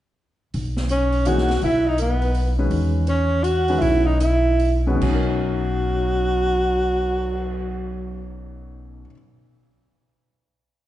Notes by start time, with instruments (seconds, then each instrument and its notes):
0.54 upright bass B1, open hi-hat
0.77 snare
0.89 tenor saxophone C#4, alto saxophone C#5, closed hi-hat
1.13 open hi-hat
1.25 grand piano E3 A#3 D#4 G#4 C#5, tenor saxophone F#4, alto saxophone F#5, closed hi-hat
1.38 snare
1.48 snare, open hi-hat
1.62 upright bass B1, tenor saxophone E4, alto saxophone E5, open hi-hat
1.86 tenor saxophone D#4, alto saxophone D#5
1.98 tenor saxophone B3, alto saxophone B4, closed hi-hat
2.22 open hi-hat
2.35 open hi-hat
2.58 grand piano D#3 G#3 C#4 F#4 B4
2.71 upright bass E2, open hi-hat
3.07 tenor saxophone C#4, alto saxophone C#5, closed hi-hat
3.43 tenor saxophone F#4, alto saxophone F#5, closed hi-hat
3.68 grand piano D#3 G#3 C#4 F#4 B4, open hi-hat
3.78 upright bass B1, tenor saxophone E4, alto saxophone E5, open hi-hat
4.05 tenor saxophone D#4, alto saxophone D#5
4.17 tenor saxophone E4, alto saxophone E5, closed hi-hat
4.59 open hi-hat
4.87 grand piano B2 D#3 G#3 C#4 F#4 B4
4.96 grand piano F#3
5.01 upright bass B1, alto saxophone F#3, grand piano C#4, tenor saxophone F#4, kick, crash
5.09 grand piano D#4
5.15 grand piano A#4
5.29 cymbal swell